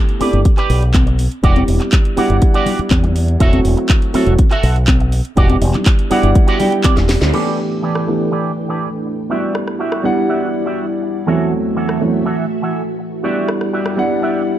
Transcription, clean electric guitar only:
0.20 G4 B4 D5
0.57 G4 B4 D5
1.06 muted clean electric guitar stroke
1.19 muted clean electric guitar stroke
1.43 F#4 G4 D5
1.80 muted clean electric guitar stroke
1.92 muted clean electric guitar stroke
2.17 F#4 G4 D5
2.54 F#4 G4 D5
3.03 muted clean electric guitar stroke
3.15 muted clean electric guitar stroke
3.40 F#4 A4 E5
3.77 muted clean electric guitar stroke
3.89 muted clean electric guitar stroke
4.14 F#4 A4 E5
4.51 F#4 A4 E5
5.00 muted clean electric guitar stroke
5.12 muted clean electric guitar stroke
5.37 F#4 G4 D5
5.74 muted clean electric guitar stroke
5.86 muted clean electric guitar stroke
6.10 F#4 G4 D5
6.47 F#4 G4 D5
6.60 G5
6.84 D5
6.96 muted clean electric guitar stroke
7.09 muted clean electric guitar stroke
7.33 E3 G4 A4 B4 D5
7.83 E3 G4 A4 B4 D5
8.31 E3 G4 A4 B4 D5
8.69 E3 G4 A4 B4 D5
9.05 muted clean electric guitar stroke
9.30 F#4 G4 D5 E5
9.79 F#4 G4 D5 E5
10.28 F#4 G4 D5 E5
10.65 F#4 G4 D5 E5
11.02 muted clean electric guitar stroke
11.27 E3 F#4 A4 E5
11.76 E3 F#4 A4 E5
12.25 E3 F#4 A4 E5
12.62 E3 F#4 A4 E5
12.99 muted clean electric guitar stroke
13.23 F#4 G4 D5 E5
13.73 F#4 G4 D5 E5
14.22 F#4 G4 D5 E5

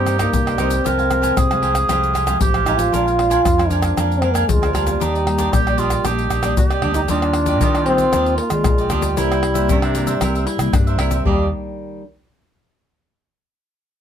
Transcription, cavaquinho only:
0.06 D#4 A#4 C5 D#5
0.18 D#4 A#4 C5 D#5
0.46 A#4 C5 D#5
0.58 D#4 A#4 C5 D#5
0.71 A#4 C5
0.84 G4 C5 F5 G#5
0.98 C5 F5 G#5
1.22 G4 C5 F5 G#5
1.50 C5 F5 G#5
1.62 G4 C5 F5 G#5
1.74 C5 F5 G#5
1.88 G4 C5 F5 G#5
2.13 G4 C5 F5 G#5
2.26 G4 C5 F5 G#5
2.54 C5 F5 G#5
2.65 G4 C5 F5 G#5
2.78 C5 F5 G#5
2.92 D4 A#4 F5 G#5
3.06 A#4 F5 G#5
3.30 D4 A#4 F5 G#5
3.58 A#4 F5 G#5
3.70 D4 A#4 F5 G#5
3.82 A#4 F5 G#5
3.97 D4 A#4 F5 G#5
4.22 D4 A#4 F5 G#5
4.34 D4 A#4 F5 G#5
4.62 A#4 F5 G#5
4.73 D4 A#4 F5 G#5
4.86 A#4 F5 G#5
5.00 D4 G4 D5 D#5
5.14 G4 D5 D#5
5.38 D4 G4 D5 D#5
5.67 G4 D5 D#5
5.78 D4 G4 D5 D#5
5.91 G4 D5 D#5
6.05 D4 G4 D5 D#5
6.30 D4 G4 D5 D#5
6.42 D4 G4 D5 D#5
6.70 G4 D5 D#5
6.82 D4 G4 D5 D#5
6.93 G4 D5 D#5
7.08 D4 G4 D5 D#5
7.22 G4 D5 D#5
7.34 muted cavaquinho stroke
7.46 G4 D5 D#5
7.61 D4 G4 D5 D#5
7.75 G4 D5 D#5
7.86 D4 G4 D5 D#5
7.98 G4 D5 D#5
8.13 D4 G4 D5 D#5
8.26 G4 D5 D#5
8.38 muted cavaquinho stroke
8.78 G4 D5 D#5
8.90 D4 G4 D5 D#5
9.02 G4 D5 D#5
9.17 E4 A#4 C5 E5
9.30 A#4 C5 E5
9.43 muted cavaquinho stroke
9.54 A#4 C5 E5
9.69 E4 A#4 C5 E5
9.82 A#4 C5 E5
9.94 E4 A#4 C5 E5
10.07 A#4 C5 E5
10.21 E4 A#4 C5 E5
10.35 A#4 C5 E5
10.47 muted cavaquinho stroke
10.87 A#4 C5 E5
10.98 E4 A#4 C5 E5
11.11 A#4 C5 E5
11.25 D4 G4 D5 D#5

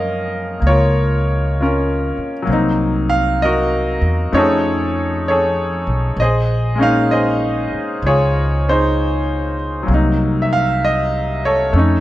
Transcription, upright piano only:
Already playing: F3 G#3 A#3 C#4 A#4 D#5 F5
0.60 A#3
0.67 F4 A#4 C#5
1.60 C#4 F4 A#4
2.42 F#3 A#3
2.50 C4 D#4
3.10 F5
3.42 F#4 A#4 D#5
4.32 F3 A3 C#4 D#4 C#5
4.37 G#4 A4
5.28 G#4 A4 C#5
6.20 G#4 C5 D#5
6.75 G#3 A#3 C#4
6.81 D#4 F5
7.11 G#4 C5 D#5
8.06 F4 G#4 C#5
8.69 D#4 G#4 C5
9.83 F#3 A#3
9.91 C3 D#4
10.42 E5
10.53 F5
10.85 D#5
11.45 A4 C#5
11.73 A3 C#4
11.78 D#4

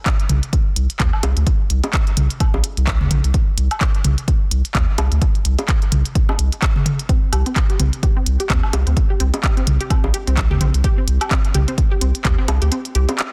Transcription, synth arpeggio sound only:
7.09 C4
7.33 G4
7.46 C4
7.70 G4
7.80 C4
8.03 G4
8.17 C4
8.40 G4
8.50 C4
8.73 G4
8.87 C4
9.10 G4
9.20 C4
9.44 G4
9.57 C4
9.81 G4
9.91 C4
10.14 G4
10.27 C4
10.51 G4
10.61 C4
10.84 G4
10.98 C4
11.21 G4
11.31 C4
11.55 G4
11.68 C4
11.92 G4
12.01 C4
12.25 G4
12.38 C4
12.62 G4
12.72 C4
12.95 G4
13.09 C4

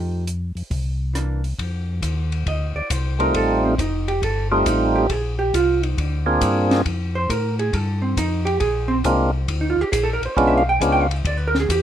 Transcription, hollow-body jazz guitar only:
Already playing: F3 A3 D#4 G4
1.14 E3 A#3 D4
2.48 D#5
2.76 D5
2.92 C5
3.21 A#4
3.36 A4
3.65 C4
3.80 D#4
4.08 G4
4.24 A4
4.51 G4
4.68 D#4
4.96 G4
5.11 G#4
5.39 G4
5.55 F4
5.84 D#4
6.00 D4
7.15 C5
7.30 A#4
7.59 G#4
7.74 A4
8.02 C4
8.18 D#4
8.45 G4
8.60 G#4
8.88 C4
9.61 D#4
9.70 F4
9.81 G4
9.92 G#4
10.03 A4
10.13 A#4
10.25 C5
10.37 D5
10.47 E5
10.57 F5
10.69 G5
10.80 G#5
10.92 G5
11.03 F5
11.16 E5
11.27 D5
11.37 B4
11.47 A#4
11.60 G#4
11.71 G4

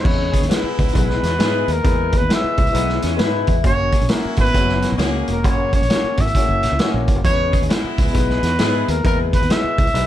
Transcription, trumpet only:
0.04 C#5
0.80 B4
1.73 A#4
2.17 B4
2.34 E5
3.66 C#5
4.40 B4
5.32 A#4
5.48 C#5
5.75 C#5
6.21 E5
7.25 C#5
8.00 B4
8.90 A#4
9.06 A#4
9.34 B4
9.51 E5

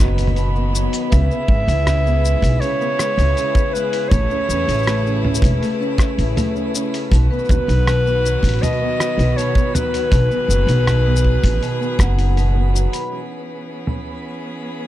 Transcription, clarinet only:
Already playing: B4
1.11 E5
2.61 C#5
3.73 B4
4.09 C#5
7.11 B4
8.62 D#5
9.37 C#5
9.74 B4

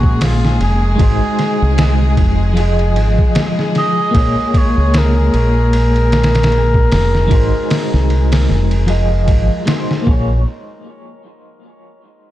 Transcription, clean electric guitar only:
Already playing: A#3 C#4 G#4 F5
0.96 G#3 D#4
1.00 F#4 C5
2.53 F3 F4
2.58 G#4 D#5
4.11 A#3 F4 G#4
4.17 C#5
7.28 G#3 D#4
7.32 F#4 C5
8.86 F3 F4 G#4 D#5
9.66 G#3 D#4 F#4 C5
10.02 A#3 F4
10.08 G#4 C#5

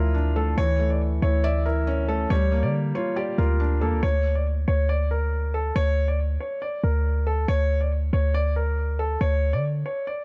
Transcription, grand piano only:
Already playing: A#4
0.36 A4
0.58 C#5
0.90 D5
1.22 C#5
1.44 D5
1.66 A#4
2.08 A4
2.30 C#5
2.63 D5
2.95 C#5
3.17 D5
3.38 A#4
3.81 A4
4.03 C#5
4.35 D5
4.68 C#5
4.89 D5
5.11 A#4
5.54 A4
5.76 C#5
6.08 D5
6.40 C#5
6.62 D5
6.84 A#4
7.27 A4
7.48 C#5
7.81 D5
8.13 C#5
8.34 D5
8.56 A#4
8.99 A4
9.21 C#5
9.53 D5
9.86 C#5
10.07 D5

